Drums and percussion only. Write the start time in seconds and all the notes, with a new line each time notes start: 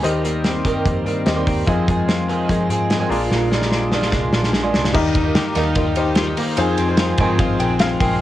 0.04 closed hi-hat
0.25 closed hi-hat
0.44 snare, closed hi-hat
0.65 kick, closed hi-hat
0.86 kick, closed hi-hat
1.06 closed hi-hat
1.26 snare, closed hi-hat
1.47 kick, open hi-hat
1.67 kick, closed hi-hat
1.88 kick, closed hi-hat
2.09 snare, closed hi-hat
2.29 closed hi-hat
2.49 kick, closed hi-hat
2.70 closed hi-hat
2.90 snare, closed hi-hat
3.12 open hi-hat
3.31 snare
3.52 snare
3.62 snare
3.72 snare
3.92 snare
4.02 snare
4.12 kick, snare
4.33 snare
4.43 snare
4.53 snare
4.74 snare
4.85 snare
4.95 kick, crash
5.15 kick, ride
5.35 snare, ride
5.55 snare, ride
5.75 kick, ride
5.96 ride
6.15 snare, ride
6.37 open hi-hat, ride
6.57 hi-hat pedal, ride
6.78 ride
6.97 snare, ride
7.18 kick, ride
7.39 kick, ride
7.60 ride
7.79 snare, ride
8.01 kick, open hi-hat, ride